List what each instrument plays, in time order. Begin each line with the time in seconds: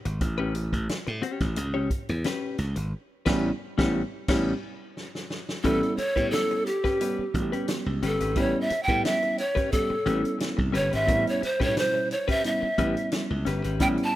0.05 slap bass G#1, muted clean electric guitar stroke, closed hi-hat
0.21 slap bass A1, muted clean electric guitar stroke, kick, closed hi-hat
0.38 clean electric guitar C#4 G4 B4
0.55 muted clean electric guitar stroke, closed hi-hat
0.73 slap bass A1, muted clean electric guitar stroke, kick, closed hi-hat
0.89 snare, closed hi-hat
1.07 slap bass A2, muted clean electric guitar stroke, closed hi-hat
1.22 clean electric guitar C#4 G4 C#5, closed hi-hat
1.40 slap bass A1, muted clean electric guitar stroke, kick, snare, closed hi-hat
1.56 slap bass C#2, muted clean electric guitar stroke, closed hi-hat
1.74 clean electric guitar C#4 G4 C#5
1.90 muted clean electric guitar stroke, kick, closed hi-hat
2.09 slap bass E2, muted clean electric guitar stroke, closed hi-hat
2.24 clean electric guitar C#4 G4 B4, snare, closed hi-hat
2.58 slap bass C#2, muted clean electric guitar stroke, snare, closed hi-hat
2.76 slap bass G#1, muted clean electric guitar stroke, closed hi-hat
3.26 slap bass A1, tine electric piano G3 B3 C#4 E4, clean electric guitar C#4 G4 B4, kick, snare, crash
3.78 slap bass A1, tine electric piano G3 B3 C#4 E4, clean electric guitar C#4 G4 C#5, kick, snare
4.28 slap bass A1, tine electric piano G3 B3 C#4 E4, clean electric guitar C#4 G4 C#5, kick, snare, crash
4.97 snare
5.15 snare
5.30 snare
5.49 snare
5.64 slap bass A1, tine electric piano G3 B3 C#4 E4, clean electric guitar C#4 G4 B4, pan flute A4, kick, closed hi-hat
5.83 muted clean electric guitar stroke, closed hi-hat
5.97 pan flute C#5, muted clean electric guitar stroke, muted slap bass stroke, closed hi-hat
6.16 slap bass A2, tine electric piano G3 B3 C#4 E4, clean electric guitar C#4 G4 B4, kick, closed hi-hat
6.31 pan flute A4, muted clean electric guitar stroke, snare, closed hi-hat
6.51 muted clean electric guitar stroke, closed hi-hat
6.66 pan flute G4, closed hi-hat
6.84 clean electric guitar C#4 G4 B4, kick, snare, closed hi-hat
7.00 tine electric piano G3 B3 C#4 G4, clean electric guitar C#4 G4 B4, closed hi-hat
7.19 muted slap bass stroke
7.34 slap bass A1, tine electric piano G3 B3 C#4 F#4, muted clean electric guitar stroke, kick, closed hi-hat
7.42 tine electric piano G4
7.52 clean electric guitar C#4 G4 B4, closed hi-hat
7.68 muted clean electric guitar stroke, snare, closed hi-hat
7.86 slap bass C#2, muted clean electric guitar stroke
8.02 slap bass G1, clean electric guitar C#4 G4 B4, pan flute A4, snare, closed hi-hat
8.20 slap bass G#1, clean electric guitar C#4 G4 B4, closed hi-hat
8.36 slap bass A1, tine electric piano G3 B3 C#4 E4, clean electric guitar C#4 G4 B4, pan flute C#5, kick, closed hi-hat
8.56 muted clean electric guitar stroke
8.61 pan flute E5
8.70 muted slap bass stroke, muted clean electric guitar stroke, closed hi-hat
8.83 pan flute G5
8.88 slap bass A2, tine electric piano G3 B3 C#4 E4, clean electric guitar C#4 G4 B4, kick, closed hi-hat
9.05 pan flute E5, muted clean electric guitar stroke, snare, closed hi-hat
9.22 muted clean electric guitar stroke, closed hi-hat
9.38 pan flute C#5, closed hi-hat
9.55 clean electric guitar C#4 G4 B4, kick, snare, closed hi-hat
9.72 tine electric piano G3 B3 C#4 G4, pan flute A4, muted clean electric guitar stroke, kick, closed hi-hat
9.90 muted slap bass stroke, muted clean electric guitar stroke
10.06 slap bass A1, tine electric piano G3 B3 C#4 E4, clean electric guitar C#4 G4 B4, closed hi-hat
10.23 muted clean electric guitar stroke, closed hi-hat
10.38 muted clean electric guitar stroke, snare, closed hi-hat
10.57 slap bass C2, muted clean electric guitar stroke, kick
10.72 slap bass G1, clean electric guitar C#4 G4 B4, pan flute C#5, snare, closed hi-hat
10.90 slap bass G#1, clean electric guitar C#4 G4 B4, closed hi-hat
10.95 pan flute E5
11.06 slap bass A1, tine electric piano G3 B3 C#4 E4, clean electric guitar C#4 G4 B4, kick, closed hi-hat
11.25 pan flute C#5, muted clean electric guitar stroke, closed hi-hat
11.41 pan flute C5, muted clean electric guitar stroke, muted slap bass stroke, closed hi-hat
11.60 slap bass A2, tine electric piano B2 G3 C#4 D4, clean electric guitar C#4 G4 B4, pan flute C#5, kick, closed hi-hat
11.67 tine electric piano E4
11.76 pan flute C5, muted clean electric guitar stroke, snare, closed hi-hat
11.94 muted clean electric guitar stroke
12.11 pan flute C#5, closed hi-hat
12.28 clean electric guitar C#4 G4 B4, pan flute E5, kick, snare, closed hi-hat
12.44 tine electric piano G3 B3 C#4 E4, pan flute E5, muted clean electric guitar stroke, closed hi-hat
12.62 muted clean electric guitar stroke, muted slap bass stroke
12.78 slap bass A1, tine electric piano G3 B3 C#4 E4, clean electric guitar C#4 G4 B4, kick, closed hi-hat
12.97 muted clean electric guitar stroke, closed hi-hat
13.12 muted clean electric guitar stroke, snare, closed hi-hat
13.30 slap bass C#2, muted clean electric guitar stroke
13.45 slap bass G1, clean electric guitar C#4 G4 B4, snare, closed hi-hat
13.64 slap bass G#1, clean electric guitar C#4 G4 B4, closed hi-hat
13.80 slap bass A1, tine electric piano G3 B3 C#4 E4, clean electric guitar C#4 G4 B4, pan flute G5, kick, closed hi-hat
13.98 muted clean electric guitar stroke, closed hi-hat
14.04 pan flute A5